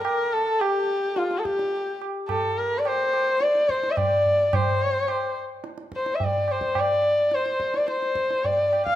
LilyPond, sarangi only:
\new Staff \with { instrumentName = "Sarangi" } { \time 4/4 \tempo 4 = 107 bes'8 a'8 g'4 f'16. a'32 g'4 r8 | a'8 bes'16. d''32 c''4 d''8 c''16. e''32 d''4 | c''4. r4 c''16. e''32 d''8 c''8 | d''4 c''8. d''16 c''4 d''8. f''16 | }